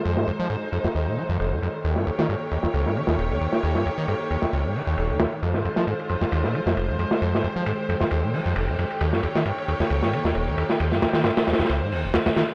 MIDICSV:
0, 0, Header, 1, 4, 480
1, 0, Start_track
1, 0, Tempo, 447761
1, 58, Time_signature, 4, 2, 24, 8
1, 13444, End_track
2, 0, Start_track
2, 0, Title_t, "String section"
2, 0, Program_c, 0, 48
2, 0, Note_on_c, 0, 51, 75
2, 0, Note_on_c, 0, 56, 70
2, 0, Note_on_c, 0, 72, 80
2, 54, Note_on_c, 0, 63, 69
2, 1935, Note_off_c, 0, 56, 0
2, 1936, Note_off_c, 0, 72, 0
2, 1957, Note_off_c, 0, 63, 0
2, 1972, Note_on_c, 0, 58, 68
2, 1972, Note_on_c, 0, 67, 69
2, 1972, Note_on_c, 0, 73, 84
2, 5776, Note_off_c, 0, 58, 0
2, 5776, Note_off_c, 0, 67, 0
2, 5777, Note_off_c, 0, 73, 0
2, 5812, Note_on_c, 0, 65, 67
2, 5813, Note_on_c, 0, 56, 69
2, 5813, Note_on_c, 0, 72, 83
2, 7716, Note_off_c, 0, 65, 0
2, 7731, Note_on_c, 0, 67, 69
2, 9612, Note_off_c, 0, 51, 0
2, 9617, Note_off_c, 0, 56, 0
2, 9617, Note_off_c, 0, 72, 0
2, 9652, Note_on_c, 0, 51, 76
2, 9652, Note_on_c, 0, 58, 69
2, 9653, Note_on_c, 0, 73, 85
2, 11556, Note_off_c, 0, 73, 0
2, 11571, Note_on_c, 0, 72, 86
2, 13444, Note_off_c, 0, 51, 0
2, 13444, Note_off_c, 0, 58, 0
2, 13444, Note_off_c, 0, 67, 0
2, 13444, Note_off_c, 0, 72, 0
2, 13444, End_track
3, 0, Start_track
3, 0, Title_t, "Acid bass"
3, 0, Program_c, 1, 38
3, 58, Note_on_c, 1, 41, 99
3, 185, Note_on_c, 1, 44, 77
3, 201, Note_off_c, 1, 41, 0
3, 278, Note_off_c, 1, 44, 0
3, 298, Note_on_c, 1, 41, 73
3, 340, Note_off_c, 1, 41, 0
3, 423, Note_on_c, 1, 53, 93
3, 517, Note_off_c, 1, 53, 0
3, 535, Note_on_c, 1, 44, 78
3, 606, Note_off_c, 1, 44, 0
3, 775, Note_on_c, 1, 41, 70
3, 846, Note_off_c, 1, 41, 0
3, 905, Note_on_c, 1, 41, 92
3, 942, Note_off_c, 1, 41, 0
3, 1019, Note_on_c, 1, 39, 97
3, 1147, Note_on_c, 1, 46, 73
3, 1163, Note_off_c, 1, 39, 0
3, 1259, Note_on_c, 1, 53, 95
3, 1275, Note_off_c, 1, 46, 0
3, 1328, Note_off_c, 1, 53, 0
3, 1387, Note_on_c, 1, 41, 97
3, 1479, Note_off_c, 1, 41, 0
3, 1502, Note_on_c, 1, 29, 80
3, 1629, Note_on_c, 1, 41, 71
3, 1645, Note_off_c, 1, 29, 0
3, 1720, Note_off_c, 1, 41, 0
3, 1742, Note_on_c, 1, 41, 74
3, 1810, Note_off_c, 1, 41, 0
3, 1979, Note_on_c, 1, 39, 99
3, 2107, Note_on_c, 1, 43, 76
3, 2123, Note_off_c, 1, 39, 0
3, 2199, Note_off_c, 1, 43, 0
3, 2219, Note_on_c, 1, 39, 76
3, 2260, Note_off_c, 1, 39, 0
3, 2345, Note_on_c, 1, 51, 94
3, 2438, Note_off_c, 1, 51, 0
3, 2457, Note_on_c, 1, 43, 80
3, 2527, Note_off_c, 1, 43, 0
3, 2697, Note_on_c, 1, 39, 70
3, 2767, Note_off_c, 1, 39, 0
3, 2827, Note_on_c, 1, 39, 96
3, 2863, Note_off_c, 1, 39, 0
3, 2937, Note_on_c, 1, 37, 98
3, 3063, Note_on_c, 1, 44, 74
3, 3080, Note_off_c, 1, 37, 0
3, 3176, Note_on_c, 1, 51, 98
3, 3192, Note_off_c, 1, 44, 0
3, 3247, Note_off_c, 1, 51, 0
3, 3303, Note_on_c, 1, 39, 100
3, 3397, Note_off_c, 1, 39, 0
3, 3417, Note_on_c, 1, 27, 80
3, 3544, Note_on_c, 1, 39, 74
3, 3560, Note_off_c, 1, 27, 0
3, 3637, Note_off_c, 1, 39, 0
3, 3658, Note_on_c, 1, 39, 77
3, 3728, Note_off_c, 1, 39, 0
3, 3897, Note_on_c, 1, 39, 98
3, 4026, Note_on_c, 1, 43, 76
3, 4042, Note_off_c, 1, 39, 0
3, 4118, Note_off_c, 1, 43, 0
3, 4138, Note_on_c, 1, 39, 76
3, 4180, Note_off_c, 1, 39, 0
3, 4265, Note_on_c, 1, 51, 93
3, 4358, Note_off_c, 1, 51, 0
3, 4375, Note_on_c, 1, 43, 79
3, 4446, Note_off_c, 1, 43, 0
3, 4618, Note_on_c, 1, 39, 70
3, 4688, Note_off_c, 1, 39, 0
3, 4743, Note_on_c, 1, 39, 97
3, 4781, Note_off_c, 1, 39, 0
3, 4857, Note_on_c, 1, 37, 96
3, 4984, Note_on_c, 1, 44, 75
3, 5000, Note_off_c, 1, 37, 0
3, 5095, Note_on_c, 1, 51, 96
3, 5111, Note_off_c, 1, 44, 0
3, 5166, Note_off_c, 1, 51, 0
3, 5222, Note_on_c, 1, 39, 99
3, 5316, Note_off_c, 1, 39, 0
3, 5337, Note_on_c, 1, 27, 78
3, 5464, Note_on_c, 1, 39, 72
3, 5480, Note_off_c, 1, 27, 0
3, 5557, Note_off_c, 1, 39, 0
3, 5577, Note_on_c, 1, 39, 72
3, 5647, Note_off_c, 1, 39, 0
3, 5816, Note_on_c, 1, 41, 97
3, 5944, Note_on_c, 1, 44, 78
3, 5960, Note_off_c, 1, 41, 0
3, 6038, Note_off_c, 1, 44, 0
3, 6055, Note_on_c, 1, 41, 74
3, 6098, Note_off_c, 1, 41, 0
3, 6183, Note_on_c, 1, 53, 93
3, 6277, Note_off_c, 1, 53, 0
3, 6295, Note_on_c, 1, 44, 79
3, 6366, Note_off_c, 1, 44, 0
3, 6537, Note_on_c, 1, 41, 71
3, 6607, Note_off_c, 1, 41, 0
3, 6660, Note_on_c, 1, 41, 95
3, 6700, Note_off_c, 1, 41, 0
3, 6776, Note_on_c, 1, 39, 99
3, 6904, Note_on_c, 1, 46, 74
3, 6920, Note_off_c, 1, 39, 0
3, 7015, Note_on_c, 1, 53, 99
3, 7031, Note_off_c, 1, 46, 0
3, 7086, Note_off_c, 1, 53, 0
3, 7142, Note_on_c, 1, 41, 99
3, 7236, Note_off_c, 1, 41, 0
3, 7256, Note_on_c, 1, 29, 79
3, 7384, Note_on_c, 1, 41, 75
3, 7400, Note_off_c, 1, 29, 0
3, 7478, Note_off_c, 1, 41, 0
3, 7495, Note_on_c, 1, 41, 73
3, 7566, Note_off_c, 1, 41, 0
3, 7736, Note_on_c, 1, 41, 94
3, 7865, Note_on_c, 1, 44, 76
3, 7881, Note_off_c, 1, 41, 0
3, 7958, Note_off_c, 1, 44, 0
3, 7977, Note_on_c, 1, 41, 73
3, 8019, Note_off_c, 1, 41, 0
3, 8104, Note_on_c, 1, 53, 98
3, 8197, Note_off_c, 1, 53, 0
3, 8218, Note_on_c, 1, 44, 81
3, 8288, Note_off_c, 1, 44, 0
3, 8459, Note_on_c, 1, 41, 73
3, 8528, Note_off_c, 1, 41, 0
3, 8586, Note_on_c, 1, 41, 98
3, 8623, Note_off_c, 1, 41, 0
3, 8699, Note_on_c, 1, 39, 98
3, 8825, Note_on_c, 1, 46, 75
3, 8841, Note_off_c, 1, 39, 0
3, 8937, Note_on_c, 1, 53, 100
3, 8953, Note_off_c, 1, 46, 0
3, 9007, Note_off_c, 1, 53, 0
3, 9066, Note_on_c, 1, 41, 100
3, 9159, Note_off_c, 1, 41, 0
3, 9179, Note_on_c, 1, 29, 83
3, 9306, Note_on_c, 1, 41, 71
3, 9322, Note_off_c, 1, 29, 0
3, 9398, Note_off_c, 1, 41, 0
3, 9420, Note_on_c, 1, 41, 77
3, 9489, Note_off_c, 1, 41, 0
3, 9659, Note_on_c, 1, 39, 94
3, 9786, Note_on_c, 1, 43, 77
3, 9802, Note_off_c, 1, 39, 0
3, 9878, Note_off_c, 1, 43, 0
3, 9899, Note_on_c, 1, 39, 75
3, 9940, Note_off_c, 1, 39, 0
3, 10026, Note_on_c, 1, 51, 95
3, 10118, Note_off_c, 1, 51, 0
3, 10139, Note_on_c, 1, 43, 81
3, 10208, Note_off_c, 1, 43, 0
3, 10379, Note_on_c, 1, 39, 70
3, 10448, Note_off_c, 1, 39, 0
3, 10506, Note_on_c, 1, 39, 97
3, 10543, Note_off_c, 1, 39, 0
3, 10617, Note_on_c, 1, 37, 99
3, 10745, Note_on_c, 1, 44, 75
3, 10761, Note_off_c, 1, 37, 0
3, 10860, Note_on_c, 1, 51, 99
3, 10876, Note_off_c, 1, 44, 0
3, 10929, Note_off_c, 1, 51, 0
3, 10985, Note_on_c, 1, 39, 100
3, 11078, Note_off_c, 1, 39, 0
3, 11100, Note_on_c, 1, 27, 81
3, 11226, Note_on_c, 1, 39, 73
3, 11242, Note_off_c, 1, 27, 0
3, 11318, Note_off_c, 1, 39, 0
3, 11340, Note_on_c, 1, 39, 75
3, 11409, Note_off_c, 1, 39, 0
3, 11580, Note_on_c, 1, 39, 93
3, 11707, Note_on_c, 1, 43, 76
3, 11724, Note_off_c, 1, 39, 0
3, 11799, Note_off_c, 1, 43, 0
3, 11821, Note_on_c, 1, 39, 73
3, 11861, Note_off_c, 1, 39, 0
3, 11946, Note_on_c, 1, 51, 93
3, 12039, Note_off_c, 1, 51, 0
3, 12059, Note_on_c, 1, 43, 81
3, 12128, Note_off_c, 1, 43, 0
3, 12299, Note_on_c, 1, 39, 73
3, 12368, Note_off_c, 1, 39, 0
3, 12427, Note_on_c, 1, 39, 95
3, 12463, Note_off_c, 1, 39, 0
3, 12540, Note_on_c, 1, 37, 99
3, 12663, Note_on_c, 1, 44, 76
3, 12680, Note_off_c, 1, 37, 0
3, 12778, Note_on_c, 1, 39, 100
3, 12795, Note_off_c, 1, 44, 0
3, 12906, Note_on_c, 1, 27, 100
3, 12922, Note_off_c, 1, 39, 0
3, 12998, Note_off_c, 1, 27, 0
3, 13019, Note_on_c, 1, 39, 97
3, 13060, Note_off_c, 1, 39, 0
3, 13146, Note_on_c, 1, 39, 76
3, 13183, Note_off_c, 1, 39, 0
3, 13260, Note_on_c, 1, 51, 76
3, 13329, Note_off_c, 1, 51, 0
3, 13444, End_track
4, 0, Start_track
4, 0, Title_t, "Drums"
4, 51, Note_on_c, 9, 51, 74
4, 158, Note_off_c, 9, 51, 0
4, 183, Note_on_c, 9, 38, 43
4, 290, Note_off_c, 9, 38, 0
4, 299, Note_on_c, 9, 51, 63
4, 407, Note_off_c, 9, 51, 0
4, 531, Note_on_c, 9, 51, 79
4, 638, Note_off_c, 9, 51, 0
4, 779, Note_on_c, 9, 51, 65
4, 886, Note_off_c, 9, 51, 0
4, 908, Note_on_c, 9, 38, 39
4, 1015, Note_off_c, 9, 38, 0
4, 1020, Note_on_c, 9, 51, 70
4, 1128, Note_off_c, 9, 51, 0
4, 1261, Note_on_c, 9, 46, 79
4, 1368, Note_off_c, 9, 46, 0
4, 1497, Note_on_c, 9, 51, 77
4, 1604, Note_off_c, 9, 51, 0
4, 1619, Note_on_c, 9, 51, 43
4, 1726, Note_off_c, 9, 51, 0
4, 1742, Note_on_c, 9, 51, 64
4, 1849, Note_off_c, 9, 51, 0
4, 1864, Note_on_c, 9, 51, 43
4, 1971, Note_off_c, 9, 51, 0
4, 1979, Note_on_c, 9, 51, 79
4, 2086, Note_off_c, 9, 51, 0
4, 2100, Note_on_c, 9, 38, 36
4, 2207, Note_off_c, 9, 38, 0
4, 2216, Note_on_c, 9, 51, 67
4, 2323, Note_off_c, 9, 51, 0
4, 2348, Note_on_c, 9, 38, 51
4, 2456, Note_off_c, 9, 38, 0
4, 2460, Note_on_c, 9, 51, 80
4, 2567, Note_off_c, 9, 51, 0
4, 2577, Note_on_c, 9, 51, 39
4, 2684, Note_off_c, 9, 51, 0
4, 2698, Note_on_c, 9, 51, 68
4, 2805, Note_off_c, 9, 51, 0
4, 2819, Note_on_c, 9, 38, 38
4, 2926, Note_off_c, 9, 38, 0
4, 2935, Note_on_c, 9, 51, 86
4, 3042, Note_off_c, 9, 51, 0
4, 3069, Note_on_c, 9, 38, 30
4, 3176, Note_off_c, 9, 38, 0
4, 3183, Note_on_c, 9, 51, 69
4, 3290, Note_off_c, 9, 51, 0
4, 3292, Note_on_c, 9, 38, 52
4, 3400, Note_off_c, 9, 38, 0
4, 3425, Note_on_c, 9, 51, 85
4, 3532, Note_off_c, 9, 51, 0
4, 3540, Note_on_c, 9, 51, 41
4, 3647, Note_off_c, 9, 51, 0
4, 3650, Note_on_c, 9, 51, 59
4, 3758, Note_off_c, 9, 51, 0
4, 3779, Note_on_c, 9, 38, 44
4, 3887, Note_off_c, 9, 38, 0
4, 3891, Note_on_c, 9, 51, 73
4, 3999, Note_off_c, 9, 51, 0
4, 4021, Note_on_c, 9, 38, 39
4, 4128, Note_off_c, 9, 38, 0
4, 4145, Note_on_c, 9, 51, 64
4, 4252, Note_off_c, 9, 51, 0
4, 4373, Note_on_c, 9, 51, 80
4, 4480, Note_off_c, 9, 51, 0
4, 4616, Note_on_c, 9, 51, 66
4, 4723, Note_off_c, 9, 51, 0
4, 4738, Note_on_c, 9, 38, 43
4, 4846, Note_off_c, 9, 38, 0
4, 4863, Note_on_c, 9, 51, 78
4, 4970, Note_off_c, 9, 51, 0
4, 5096, Note_on_c, 9, 46, 75
4, 5203, Note_off_c, 9, 46, 0
4, 5335, Note_on_c, 9, 51, 76
4, 5442, Note_off_c, 9, 51, 0
4, 5464, Note_on_c, 9, 51, 45
4, 5570, Note_on_c, 9, 38, 93
4, 5571, Note_off_c, 9, 51, 0
4, 5578, Note_on_c, 9, 51, 72
4, 5677, Note_off_c, 9, 38, 0
4, 5685, Note_off_c, 9, 51, 0
4, 5708, Note_on_c, 9, 51, 42
4, 5815, Note_off_c, 9, 51, 0
4, 5816, Note_on_c, 9, 51, 76
4, 5923, Note_off_c, 9, 51, 0
4, 5940, Note_on_c, 9, 38, 34
4, 6047, Note_off_c, 9, 38, 0
4, 6061, Note_on_c, 9, 51, 65
4, 6168, Note_off_c, 9, 51, 0
4, 6178, Note_on_c, 9, 38, 46
4, 6285, Note_off_c, 9, 38, 0
4, 6296, Note_on_c, 9, 51, 82
4, 6403, Note_off_c, 9, 51, 0
4, 6427, Note_on_c, 9, 51, 42
4, 6532, Note_off_c, 9, 51, 0
4, 6532, Note_on_c, 9, 51, 66
4, 6640, Note_off_c, 9, 51, 0
4, 6666, Note_on_c, 9, 38, 35
4, 6774, Note_off_c, 9, 38, 0
4, 6775, Note_on_c, 9, 51, 85
4, 6883, Note_off_c, 9, 51, 0
4, 6903, Note_on_c, 9, 38, 32
4, 7010, Note_off_c, 9, 38, 0
4, 7019, Note_on_c, 9, 51, 67
4, 7127, Note_off_c, 9, 51, 0
4, 7152, Note_on_c, 9, 38, 53
4, 7259, Note_off_c, 9, 38, 0
4, 7259, Note_on_c, 9, 51, 75
4, 7366, Note_off_c, 9, 51, 0
4, 7386, Note_on_c, 9, 51, 42
4, 7493, Note_off_c, 9, 51, 0
4, 7499, Note_on_c, 9, 51, 61
4, 7606, Note_off_c, 9, 51, 0
4, 7623, Note_on_c, 9, 38, 52
4, 7730, Note_off_c, 9, 38, 0
4, 7736, Note_on_c, 9, 51, 81
4, 7844, Note_off_c, 9, 51, 0
4, 7877, Note_on_c, 9, 38, 44
4, 7975, Note_on_c, 9, 51, 58
4, 7984, Note_off_c, 9, 38, 0
4, 8083, Note_off_c, 9, 51, 0
4, 8213, Note_on_c, 9, 51, 77
4, 8320, Note_off_c, 9, 51, 0
4, 8462, Note_on_c, 9, 51, 66
4, 8570, Note_off_c, 9, 51, 0
4, 8582, Note_on_c, 9, 38, 42
4, 8689, Note_off_c, 9, 38, 0
4, 8691, Note_on_c, 9, 51, 78
4, 8798, Note_off_c, 9, 51, 0
4, 8939, Note_on_c, 9, 46, 85
4, 9046, Note_off_c, 9, 46, 0
4, 9175, Note_on_c, 9, 51, 83
4, 9282, Note_off_c, 9, 51, 0
4, 9306, Note_on_c, 9, 51, 39
4, 9413, Note_off_c, 9, 51, 0
4, 9419, Note_on_c, 9, 51, 63
4, 9527, Note_off_c, 9, 51, 0
4, 9546, Note_on_c, 9, 51, 41
4, 9653, Note_off_c, 9, 51, 0
4, 9654, Note_on_c, 9, 51, 85
4, 9761, Note_off_c, 9, 51, 0
4, 9785, Note_on_c, 9, 38, 38
4, 9892, Note_off_c, 9, 38, 0
4, 9894, Note_on_c, 9, 51, 71
4, 10001, Note_off_c, 9, 51, 0
4, 10030, Note_on_c, 9, 38, 48
4, 10136, Note_on_c, 9, 51, 81
4, 10137, Note_off_c, 9, 38, 0
4, 10243, Note_off_c, 9, 51, 0
4, 10271, Note_on_c, 9, 51, 43
4, 10378, Note_off_c, 9, 51, 0
4, 10385, Note_on_c, 9, 51, 67
4, 10492, Note_off_c, 9, 51, 0
4, 10507, Note_on_c, 9, 38, 38
4, 10615, Note_off_c, 9, 38, 0
4, 10615, Note_on_c, 9, 51, 75
4, 10722, Note_off_c, 9, 51, 0
4, 10747, Note_on_c, 9, 38, 35
4, 10854, Note_off_c, 9, 38, 0
4, 10862, Note_on_c, 9, 51, 66
4, 10969, Note_off_c, 9, 51, 0
4, 10990, Note_on_c, 9, 38, 49
4, 11095, Note_on_c, 9, 51, 78
4, 11097, Note_off_c, 9, 38, 0
4, 11202, Note_off_c, 9, 51, 0
4, 11227, Note_on_c, 9, 51, 42
4, 11334, Note_off_c, 9, 51, 0
4, 11340, Note_on_c, 9, 51, 66
4, 11447, Note_off_c, 9, 51, 0
4, 11466, Note_on_c, 9, 38, 49
4, 11573, Note_off_c, 9, 38, 0
4, 11578, Note_on_c, 9, 51, 83
4, 11685, Note_off_c, 9, 51, 0
4, 11707, Note_on_c, 9, 38, 39
4, 11814, Note_off_c, 9, 38, 0
4, 11816, Note_on_c, 9, 38, 96
4, 11818, Note_on_c, 9, 51, 71
4, 11923, Note_off_c, 9, 38, 0
4, 11925, Note_off_c, 9, 51, 0
4, 11936, Note_on_c, 9, 38, 92
4, 11946, Note_on_c, 9, 51, 78
4, 12043, Note_off_c, 9, 38, 0
4, 12049, Note_on_c, 9, 38, 109
4, 12053, Note_off_c, 9, 51, 0
4, 12055, Note_on_c, 9, 51, 69
4, 12156, Note_off_c, 9, 38, 0
4, 12162, Note_off_c, 9, 51, 0
4, 12188, Note_on_c, 9, 51, 77
4, 12191, Note_on_c, 9, 38, 102
4, 12295, Note_off_c, 9, 51, 0
4, 12296, Note_off_c, 9, 38, 0
4, 12296, Note_on_c, 9, 38, 78
4, 12301, Note_on_c, 9, 51, 70
4, 12359, Note_off_c, 9, 38, 0
4, 12359, Note_on_c, 9, 38, 89
4, 12363, Note_off_c, 9, 51, 0
4, 12363, Note_on_c, 9, 51, 68
4, 12426, Note_off_c, 9, 51, 0
4, 12426, Note_on_c, 9, 51, 59
4, 12428, Note_off_c, 9, 38, 0
4, 12428, Note_on_c, 9, 38, 81
4, 12486, Note_off_c, 9, 38, 0
4, 12486, Note_off_c, 9, 51, 0
4, 12486, Note_on_c, 9, 38, 81
4, 12486, Note_on_c, 9, 51, 64
4, 12534, Note_off_c, 9, 51, 0
4, 12534, Note_on_c, 9, 51, 81
4, 12593, Note_off_c, 9, 38, 0
4, 12641, Note_off_c, 9, 51, 0
4, 12778, Note_on_c, 9, 46, 81
4, 12885, Note_off_c, 9, 46, 0
4, 13012, Note_on_c, 9, 38, 98
4, 13019, Note_on_c, 9, 51, 80
4, 13119, Note_off_c, 9, 38, 0
4, 13127, Note_off_c, 9, 51, 0
4, 13143, Note_on_c, 9, 38, 97
4, 13143, Note_on_c, 9, 51, 80
4, 13250, Note_off_c, 9, 38, 0
4, 13251, Note_off_c, 9, 51, 0
4, 13255, Note_on_c, 9, 38, 90
4, 13258, Note_on_c, 9, 51, 69
4, 13362, Note_off_c, 9, 38, 0
4, 13365, Note_off_c, 9, 51, 0
4, 13382, Note_on_c, 9, 51, 41
4, 13444, Note_off_c, 9, 51, 0
4, 13444, End_track
0, 0, End_of_file